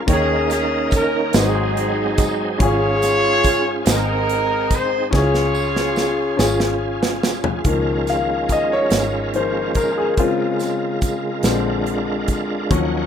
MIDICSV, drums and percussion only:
0, 0, Header, 1, 2, 480
1, 0, Start_track
1, 0, Key_signature, -5, "major"
1, 0, Tempo, 842697
1, 44, Time_signature, 6, 3, 24, 8
1, 7441, End_track
2, 0, Start_track
2, 0, Title_t, "Drums"
2, 45, Note_on_c, 9, 36, 108
2, 45, Note_on_c, 9, 42, 68
2, 102, Note_off_c, 9, 36, 0
2, 102, Note_off_c, 9, 42, 0
2, 284, Note_on_c, 9, 54, 55
2, 289, Note_on_c, 9, 42, 61
2, 293, Note_on_c, 9, 38, 36
2, 341, Note_off_c, 9, 54, 0
2, 346, Note_off_c, 9, 42, 0
2, 350, Note_off_c, 9, 38, 0
2, 518, Note_on_c, 9, 54, 58
2, 525, Note_on_c, 9, 36, 87
2, 527, Note_on_c, 9, 42, 77
2, 575, Note_off_c, 9, 54, 0
2, 582, Note_off_c, 9, 36, 0
2, 584, Note_off_c, 9, 42, 0
2, 758, Note_on_c, 9, 42, 79
2, 765, Note_on_c, 9, 38, 109
2, 766, Note_on_c, 9, 54, 94
2, 814, Note_off_c, 9, 42, 0
2, 822, Note_off_c, 9, 38, 0
2, 823, Note_off_c, 9, 54, 0
2, 1008, Note_on_c, 9, 42, 52
2, 1065, Note_off_c, 9, 42, 0
2, 1241, Note_on_c, 9, 42, 67
2, 1243, Note_on_c, 9, 36, 92
2, 1249, Note_on_c, 9, 54, 59
2, 1298, Note_off_c, 9, 42, 0
2, 1300, Note_off_c, 9, 36, 0
2, 1306, Note_off_c, 9, 54, 0
2, 1481, Note_on_c, 9, 42, 70
2, 1482, Note_on_c, 9, 36, 100
2, 1538, Note_off_c, 9, 42, 0
2, 1539, Note_off_c, 9, 36, 0
2, 1721, Note_on_c, 9, 54, 59
2, 1724, Note_on_c, 9, 42, 65
2, 1728, Note_on_c, 9, 38, 36
2, 1778, Note_off_c, 9, 54, 0
2, 1781, Note_off_c, 9, 42, 0
2, 1785, Note_off_c, 9, 38, 0
2, 1956, Note_on_c, 9, 54, 55
2, 1962, Note_on_c, 9, 36, 85
2, 1964, Note_on_c, 9, 42, 72
2, 2013, Note_off_c, 9, 54, 0
2, 2019, Note_off_c, 9, 36, 0
2, 2021, Note_off_c, 9, 42, 0
2, 2197, Note_on_c, 9, 42, 88
2, 2204, Note_on_c, 9, 54, 100
2, 2205, Note_on_c, 9, 38, 117
2, 2254, Note_off_c, 9, 42, 0
2, 2261, Note_off_c, 9, 54, 0
2, 2262, Note_off_c, 9, 38, 0
2, 2446, Note_on_c, 9, 42, 50
2, 2503, Note_off_c, 9, 42, 0
2, 2680, Note_on_c, 9, 42, 72
2, 2681, Note_on_c, 9, 36, 80
2, 2687, Note_on_c, 9, 54, 58
2, 2737, Note_off_c, 9, 42, 0
2, 2738, Note_off_c, 9, 36, 0
2, 2744, Note_off_c, 9, 54, 0
2, 2921, Note_on_c, 9, 36, 97
2, 2926, Note_on_c, 9, 38, 51
2, 2978, Note_off_c, 9, 36, 0
2, 2983, Note_off_c, 9, 38, 0
2, 3044, Note_on_c, 9, 38, 54
2, 3101, Note_off_c, 9, 38, 0
2, 3159, Note_on_c, 9, 54, 58
2, 3216, Note_off_c, 9, 54, 0
2, 3283, Note_on_c, 9, 38, 67
2, 3340, Note_off_c, 9, 38, 0
2, 3395, Note_on_c, 9, 54, 58
2, 3402, Note_on_c, 9, 38, 69
2, 3452, Note_off_c, 9, 54, 0
2, 3459, Note_off_c, 9, 38, 0
2, 3640, Note_on_c, 9, 38, 90
2, 3646, Note_on_c, 9, 54, 94
2, 3697, Note_off_c, 9, 38, 0
2, 3703, Note_off_c, 9, 54, 0
2, 3760, Note_on_c, 9, 38, 74
2, 3817, Note_off_c, 9, 38, 0
2, 4002, Note_on_c, 9, 38, 90
2, 4059, Note_off_c, 9, 38, 0
2, 4121, Note_on_c, 9, 38, 96
2, 4127, Note_on_c, 9, 54, 59
2, 4178, Note_off_c, 9, 38, 0
2, 4184, Note_off_c, 9, 54, 0
2, 4237, Note_on_c, 9, 43, 102
2, 4294, Note_off_c, 9, 43, 0
2, 4354, Note_on_c, 9, 42, 67
2, 4357, Note_on_c, 9, 36, 91
2, 4411, Note_off_c, 9, 42, 0
2, 4414, Note_off_c, 9, 36, 0
2, 4597, Note_on_c, 9, 42, 47
2, 4598, Note_on_c, 9, 54, 55
2, 4601, Note_on_c, 9, 38, 33
2, 4654, Note_off_c, 9, 42, 0
2, 4654, Note_off_c, 9, 54, 0
2, 4658, Note_off_c, 9, 38, 0
2, 4834, Note_on_c, 9, 54, 52
2, 4838, Note_on_c, 9, 36, 72
2, 4838, Note_on_c, 9, 42, 64
2, 4891, Note_off_c, 9, 54, 0
2, 4895, Note_off_c, 9, 36, 0
2, 4895, Note_off_c, 9, 42, 0
2, 5072, Note_on_c, 9, 42, 72
2, 5079, Note_on_c, 9, 38, 100
2, 5079, Note_on_c, 9, 54, 83
2, 5129, Note_off_c, 9, 42, 0
2, 5136, Note_off_c, 9, 38, 0
2, 5136, Note_off_c, 9, 54, 0
2, 5318, Note_on_c, 9, 42, 40
2, 5375, Note_off_c, 9, 42, 0
2, 5552, Note_on_c, 9, 42, 59
2, 5556, Note_on_c, 9, 36, 76
2, 5568, Note_on_c, 9, 54, 50
2, 5609, Note_off_c, 9, 42, 0
2, 5613, Note_off_c, 9, 36, 0
2, 5625, Note_off_c, 9, 54, 0
2, 5794, Note_on_c, 9, 42, 70
2, 5796, Note_on_c, 9, 36, 90
2, 5851, Note_off_c, 9, 42, 0
2, 5853, Note_off_c, 9, 36, 0
2, 6035, Note_on_c, 9, 54, 47
2, 6039, Note_on_c, 9, 42, 49
2, 6043, Note_on_c, 9, 38, 29
2, 6091, Note_off_c, 9, 54, 0
2, 6096, Note_off_c, 9, 42, 0
2, 6100, Note_off_c, 9, 38, 0
2, 6273, Note_on_c, 9, 54, 51
2, 6277, Note_on_c, 9, 36, 81
2, 6277, Note_on_c, 9, 42, 67
2, 6330, Note_off_c, 9, 54, 0
2, 6334, Note_off_c, 9, 36, 0
2, 6334, Note_off_c, 9, 42, 0
2, 6509, Note_on_c, 9, 42, 71
2, 6517, Note_on_c, 9, 38, 90
2, 6521, Note_on_c, 9, 54, 87
2, 6566, Note_off_c, 9, 42, 0
2, 6574, Note_off_c, 9, 38, 0
2, 6578, Note_off_c, 9, 54, 0
2, 6758, Note_on_c, 9, 42, 43
2, 6815, Note_off_c, 9, 42, 0
2, 6993, Note_on_c, 9, 42, 59
2, 6997, Note_on_c, 9, 36, 78
2, 7007, Note_on_c, 9, 54, 53
2, 7050, Note_off_c, 9, 42, 0
2, 7054, Note_off_c, 9, 36, 0
2, 7064, Note_off_c, 9, 54, 0
2, 7238, Note_on_c, 9, 36, 99
2, 7240, Note_on_c, 9, 42, 66
2, 7295, Note_off_c, 9, 36, 0
2, 7297, Note_off_c, 9, 42, 0
2, 7441, End_track
0, 0, End_of_file